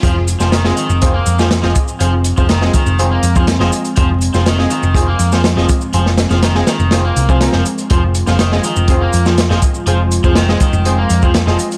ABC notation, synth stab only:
X:1
M:4/4
L:1/16
Q:1/4=122
K:Fm
V:1 name="Synth stab"
[CFAc]3 [CFAc] z [CFAe]2 z [CFAc] z2 [CFAc] z [CFAe]2 z | [CFAc]3 [CFAc] z [CFAe]2 z [CFAc] z2 [CFAc] z [CFAe]2 z | [CFAc]3 [CFAc] z [CFAe]2 z [CFAc] z2 [CFAc] z [CFAe]2 z | [CFAc]3 [CFAc] z [CFAe]2 z [CFAc] z2 [CFAc] [CFAB]2 z2 |
[CFAc]3 [CFAc] z [CFAe]2 z [CFAc] z2 [CFAc] z [CFAe]2 z | [CFAc]3 [CFAc] z [CFAe]2 z [CFAc] z2 [CFAc] z [CFAe]2 z |]